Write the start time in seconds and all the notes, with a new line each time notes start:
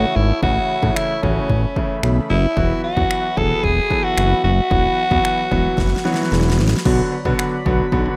Already playing: C#3 E3 A3 C#4 F#4 A4 C#5 E5 C#6
0.16 G#1 E4 B5
0.42 A1 C#3 E3 A3 E4 F#4, kick
0.83 A2 C#3 E3 A3 E4, kick
0.96 E4, finger snap
1.23 A1 C#3 E3 A3 C#4 F#4, kick
1.49 A1, kick
1.76 C#3 E3 A3 E4, kick
2.03 B1, finger snap
2.30 F#1 E4
2.56 E1 E3 F#3 B3 F#4 B4, kick
2.84 F#4
2.97 E2 E3 F#3 B3 F#4, kick
3.11 finger snap
3.37 E1 E3 F#3 B3 G#4 A4, kick
3.64 E1 G#4, kick
3.90 E3 F#3 B3 A4, kick
4.04 F#4
4.17 F#1, finger snap
4.44 F#1 F#4
4.71 E1 E3 F#3 B3 F#4 F#5, kick
5.11 E2 E3 F#3 B3 F#4, kick
5.25 finger snap
5.51 E1 E3 F#3 B3 F#4, kick
5.78 F#1, kick, snare
5.87 snare
5.96 snare
6.05 E3 F#3 B3 F#4, snare
6.14 snare
6.23 snare
6.32 E1, snare
6.41 snare
6.50 snare
6.58 A1, snare
6.67 snare
6.76 snare
6.85 B1 D3 F#3 B3 F#4 B4 D5 B5, kick, crash
7.12 B4
7.25 B2 D3 F#3 B3 F#4 D5, kick
7.39 F#5, finger snap
7.65 B1 D3 F#3 B3 F#4, kick
7.92 B1 D3 F#3 B3 F#4, kick
8.06 D4